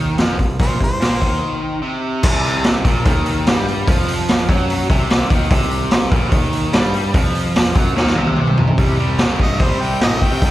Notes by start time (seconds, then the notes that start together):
Already playing: D#2 D#3
0.18 F2 F3, snare, open hi-hat
0.39 C2 C3, kick, open hi-hat
0.59 A#1 A#2 C5, kick, open hi-hat
0.80 C2 C3 C5, kick, open hi-hat
1.00 A#2 A#3, snare, open hi-hat
1.21 D#2 D#3, kick, open hi-hat
1.82 C3
2.23 C2 C3, kick, crash
2.44 open hi-hat
2.64 snare, open hi-hat
2.85 A#1 A#2, kick, open hi-hat
3.05 D#2 D#3, kick, open hi-hat
3.26 open hi-hat
3.46 G2 G3, snare, open hi-hat
3.68 open hi-hat
3.88 F2 F3, kick, open hi-hat
4.08 open hi-hat
4.29 snare, open hi-hat
4.49 F#2 F#3, kick, open hi-hat
4.70 open hi-hat
4.90 C2 C3, kick, open hi-hat
5.10 snare, open hi-hat
5.30 D#2 D#3, kick, open hi-hat
5.51 C2 C3, kick, open hi-hat
5.71 open hi-hat
5.91 snare, open hi-hat
6.02 snare
6.12 A#1 A#2, kick, open hi-hat
6.32 D#2 D#3, kick, open hi-hat
6.53 open hi-hat
6.73 G2 G3, snare, open hi-hat
6.94 open hi-hat
7.14 F2 F3, kick, open hi-hat
7.35 open hi-hat
7.56 snare, open hi-hat
7.66 snare
7.75 F#2 F#3, kick, open hi-hat
7.96 D#2 D#3, snare
8.07 snare
8.16 C2 C3, high tom
8.27 high tom
8.36 mid tom
8.47 mid tom
8.57 floor tom
8.67 floor tom
8.78 C2 C3 G3, kick, open hi-hat
9.00 C3 G3
9.08 C2
9.18 C3 A3, snare, open hi-hat
9.39 G2 C3 A3 D#5, kick
9.59 C3 G3 C5, kick, open hi-hat
9.70 C2
9.81 C3 G3 G5
10.01 A2 C3 A3 D#5, snare, open hi-hat
10.22 C3 A3 G5, kick
10.32 C3
10.41 C2 C3 G3, kick, open hi-hat